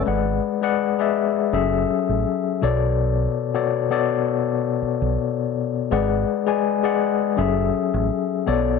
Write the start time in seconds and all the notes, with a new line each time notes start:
0.06 G#1 G#3 G#4 B4 D5 F#5
0.62 G#3 G#4 B4 D5 F#5
0.99 G#3 G#4 B4 D5 E5
1.53 F#1 F#3 C#4 G#4 A4 E5
1.90 muted fingered electric bass stroke
2.09 A1
2.62 B1 B2 B3 A4 C#5 D5
3.54 B2 B3 A4 C#5 D5
3.91 B2 B3 A4 C#5 D5
4.82 muted fingered electric bass stroke
5.02 B1
5.91 G#1 G#3 G#4 B4 D5 F#5
6.47 G#3 G#4 B4 D5 G#5
6.83 G#3 G#4 B4 D5 F#5
7.37 F#1 F#3 C#4 G#4 A4 E5
7.75 muted fingered electric bass stroke
7.94 A1
8.47 B1 B2 B3 A4 C#5 D5